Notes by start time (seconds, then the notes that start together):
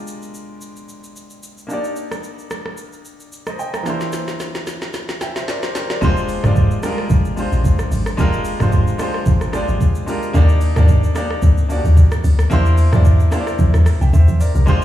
Already playing: G#3 D4 F4 G4 A#4
0.07 shaker
0.22 shaker
0.34 shaker
0.61 shaker
0.77 shaker
0.89 shaker
1.04 shaker
1.16 shaker
1.30 shaker
1.43 shaker
1.58 shaker
1.67 A#3 D4 D#4, shaker
1.72 G4 D5
1.84 shaker
1.96 shaker
2.11 cross-stick, shaker
2.23 shaker
2.39 shaker
2.50 cross-stick, shaker
2.66 cross-stick
2.77 shaker
2.93 shaker
3.05 shaker
3.20 shaker
3.32 shaker
3.47 C5 D#5, cross-stick, shaker
3.59 D#5 G5, shaker
3.74 G5 A#5, cross-stick, shaker
3.83 E3 A#3 D4 E4, snare, shaker
3.88 G4 C5
4.01 snare, shaker
4.12 snare, shaker
4.28 snare, shaker
4.40 snare, shaker
4.55 snare, shaker
4.67 snare, shaker
4.82 snare, shaker
4.94 snare, shaker
5.09 snare, shaker
5.21 E5 G5, snare, shaker
5.36 C5 E5, snare, shaker
5.48 A#4 D5, snare, shaker
5.63 C5, snare, shaker
5.75 G4 A#4, snare, shaker
5.90 A#4 D5, snare, shaker
6.01 F1 G#3 D4 F4 G4 C5, kick, shaker
6.17 shaker
6.29 open hi-hat, shaker
6.43 F1 G#3 D4 F4 G4 D5, cross-stick, mid tom, shaker
6.56 kick, shaker
6.71 shaker
6.82 G3 D4 F4 G4 A#4, cross-stick, open hi-hat, shaker
6.89 G#3
6.98 cross-stick
7.10 G#1, kick, shaker
7.25 shaker
7.36 G#3 D4 F4 G4 C5, open hi-hat, shaker
7.52 A#1, shaker
7.64 kick, shaker
7.79 cross-stick, shaker
7.91 G#1, open hi-hat, shaker
8.06 cross-stick, shaker
8.17 F1 G#3 D4 F4 G4 A#4, kick, shaker
8.33 shaker
8.45 open hi-hat, shaker
8.59 F1 G#3 D4 F4 G4 C5, cross-stick, mid tom, shaker
8.72 kick, shaker
8.87 shaker
8.98 G#3 D4 F4 G4 C5, cross-stick, open hi-hat, shaker
9.14 cross-stick
9.26 G#1, kick, shaker
9.41 cross-stick, shaker
9.52 G#3 D4 F4 G4 D5, cross-stick, open hi-hat, shaker
9.68 G#1, shaker
9.81 kick, shaker
9.95 shaker
10.06 G#3 D4 F4 G4 A#4, open hi-hat, shaker
10.23 shaker
10.33 D#2 A#3 D4 D#4 G4 D5, kick, shaker
10.49 shaker
10.61 open hi-hat, shaker
10.75 D#2 A#3 D4 D#4 G4 D5, cross-stick, mid tom, shaker
10.88 kick, shaker
11.03 shaker
11.15 A#3 D4 D#4 G4 D5, cross-stick, open hi-hat, shaker
11.30 cross-stick
11.42 D2, kick, shaker
11.58 shaker
11.68 A#3 D4 D#4 F#4 D5, open hi-hat, shaker
11.77 G4
11.84 D#2, shaker
11.97 kick, shaker
12.12 cross-stick, shaker
12.24 D2, open hi-hat, shaker
12.39 cross-stick, shaker
12.50 E2 A#3 D4 E4 G4 C5, kick, shaker
12.66 shaker
12.77 open hi-hat, shaker
12.91 E2 A#3 D4 E4 G4 D5, cross-stick, mid tom, shaker
13.05 kick, shaker
13.20 shaker
13.31 A#3 D4 E4 G4 C5, cross-stick, open hi-hat, shaker
13.41 D5
13.47 cross-stick, shaker
13.59 E2, kick, shaker
13.74 E2, cross-stick, shaker
13.86 cross-stick, open hi-hat, shaker
14.01 C2 E5 G5, shaker
14.13 D#2 C5 E5, kick, shaker
14.28 E2, shaker
14.41 A#4 D5, open hi-hat, shaker
14.55 C2 G4 A#4, shaker
14.66 F1 G#3 D4 F4 G4 C5, kick, shaker